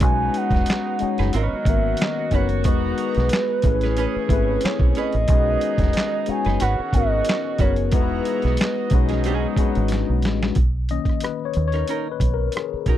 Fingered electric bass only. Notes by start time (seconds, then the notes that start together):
0.02 B1
0.51 E1
1.02 muted fingered electric bass stroke
1.20 F#1
1.35 G#1
1.66 G#1
2.32 F#1
2.66 E1
3.17 B1
3.65 A1
4.16 muted fingered electric bass stroke
4.30 G#1
4.64 muted fingered electric bass stroke
4.80 B1
5.15 A1
5.30 B1
5.79 E1
6.29 muted fingered electric bass stroke
6.46 F#1
6.62 G#1
6.94 G#1
7.60 F#1
7.93 E1
8.45 B1
8.92 B1
9.58 muted fingered electric bass stroke
9.77 G#1
10.10 B1
10.25 A1
10.57 B1
11.57 D#2
12.21 B1
12.74 muted fingered electric bass stroke
12.87 B1